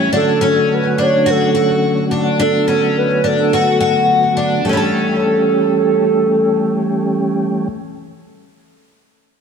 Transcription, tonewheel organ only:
0.00 2.35 C#4 medium
0.13 4.62 D3 medium
0.13 4.62 F#3 medium
0.13 4.62 A3 soft
0.13 4.62 F#4 medium
2.39 4.63 B3 soft
4.66 7.68 E3 medium
4.66 7.68 G3 medium
4.66 7.68 A3 soft
4.66 7.68 C#4 soft
4.66 7.68 G4 medium

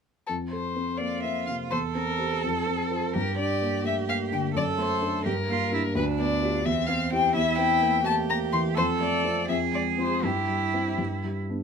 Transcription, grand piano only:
0.29 1.68 F2 soft
0.53 0.91 A4 soft
0.76 1.15 C4 soft
0.99 1.24 A#3 soft
1.24 1.62 C4 soft
1.48 1.72 C3 soft
1.71 2.41 E2 soft
1.95 2.33 C4 soft
2.19 2.40 G4 soft
2.19 2.41 C5 soft
2.44 3.13 F2 soft
2.66 3.05 C4 soft
2.91 3.12 F4 soft
2.91 3.12 C5 soft
3.15 4.52 G2 soft
3.38 3.76 D4 soft
3.62 3.99 A#3 soft
3.84 4.08 A3 soft
4.09 4.46 A#3 soft
4.32 4.56 D3 soft
4.55 5.23 F#2 soft
4.78 5.16 A3 soft
5.02 5.23 D4 soft
5.02 5.24 A4 soft
5.26 5.94 G2 soft
5.48 5.86 A#3 soft
5.72 5.93 D4 soft
5.72 5.93 G4 soft
5.95 6.63 D2 soft
6.19 6.56 B3 soft
6.42 6.63 F4 soft
6.42 6.63 G4 soft
6.64 7.33 E2 soft
6.88 7.26 C4 soft
7.12 7.33 E4 soft
7.12 7.33 G4 soft
7.36 8.73 E2 medium
7.58 7.96 C4 soft
7.82 8.19 A#3 soft
8.05 8.29 A3 soft
8.29 8.67 A#3 soft
8.53 8.77 E3 soft
8.76 9.46 F2 soft
9.00 9.39 A3 soft
9.24 9.46 C4 soft
9.24 9.47 F4 soft
9.49 10.21 F2 soft
9.73 10.13 G#3 soft
9.98 10.21 C4 soft
9.98 10.21 F4 soft
10.23 10.96 G2 soft
10.49 10.89 G3 soft
10.74 10.96 C4 soft
10.74 10.96 E4 soft
10.98 11.63 G2 soft
11.24 11.63 G3 soft
11.50 11.63 B3 soft
11.50 11.63 D4 soft

